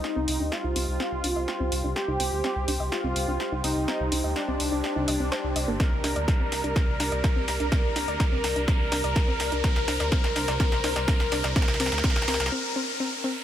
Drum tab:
HH |----o-------o-------o-------o---|----o-------o-------o-------o---|----o-------o-------o-------o---|x---o-x-x---o-x-x---o-x-x---o-x-|
SD |o-------o-------o-------o-------|o-------o-------o-------o-------|o-------o-------o-------o-------|o---o---o---o---o---o---o---o---|
BD |--------------------------------|--------------------------------|--------------------------------|o-------o-------o-------o-------|

HH |x---o-x-x---o-x-x---o-x-x---o-x-|x---o-x-x---o-x-x---o-x-x---o-x-|x---o-x-x---o-x-----------------|
SD |o---o---o---o---o---o---o---o---|o-o-o-o-o-o-o-o-o-o-o-o-o-o-o-o-|oooooooooooooooo----------------|
BD |o-------o-------o-------o-------|o-------o-------o-------o-------|o-------o-----------------------|